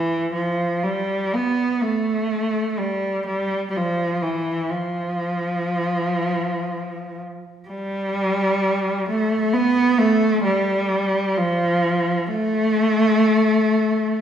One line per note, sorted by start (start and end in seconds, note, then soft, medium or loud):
0.00 0.29 E3 soft
0.34 0.83 F3 soft
0.83 1.32 G3 soft
1.34 1.82 B3 soft
1.82 2.79 A3 soft
2.78 3.25 G3 soft
3.26 3.67 G3 soft
3.70 3.76 G3 soft
3.77 4.23 F3 soft
4.22 4.70 E3 soft
4.70 7.19 F3 soft
7.68 9.06 G3 medium
9.09 9.54 A3 medium
9.54 10.00 B3 medium
9.98 10.45 A3 medium
10.44 11.34 G3 medium
11.37 12.26 F3 medium
12.27 14.21 A3 medium